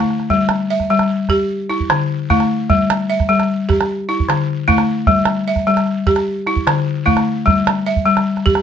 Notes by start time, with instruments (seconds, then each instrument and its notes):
Already playing: balafon A3 E4
0.00 calabash click
0.10 calabash click
0.20 calabash click
0.30 balafon G3, calabash thump
0.49 calabash click
0.70 balafon E5
0.80 calabash thump, calabash click
0.90 balafon G3, calabash click
0.99 calabash click
1.10 calabash click
1.29 balafon G4, calabash thump, calabash click
1.70 balafon E4, calabash click
1.80 calabash thump
1.90 balafon D3, calabash click
2.30 balafon A3 E4, calabash thump, calabash click
2.40 calabash click
2.70 balafon G3, calabash thump
2.90 calabash click
3.10 balafon E5
3.20 calabash thump, calabash click
3.29 balafon G3, calabash click
3.40 calabash click
3.69 balafon G4, calabash thump, calabash click
3.81 calabash click
4.09 balafon E4, calabash click
4.20 calabash thump
4.29 balafon D3, calabash click
4.68 balafon A3 E4, calabash thump, calabash click
4.78 calabash click
5.07 balafon G3, calabash thump
5.25 calabash click
5.48 balafon E5
5.56 calabash thump, calabash click
5.67 balafon G3, calabash click
5.77 calabash click
5.86 calabash click
6.07 balafon G4, calabash thump, calabash click
6.16 calabash click
6.47 balafon E4, calabash click
6.56 calabash thump
6.67 balafon D3, calabash click
7.06 balafon A3 E4, calabash thump, calabash click
7.17 calabash click
7.46 balafon G3, calabash thump, calabash click
7.67 calabash click
7.86 balafon E5, calabash click
7.96 calabash thump
8.06 balafon G3, calabash click
8.17 calabash click
8.37 calabash click
8.46 balafon G4, calabash thump
8.55 calabash click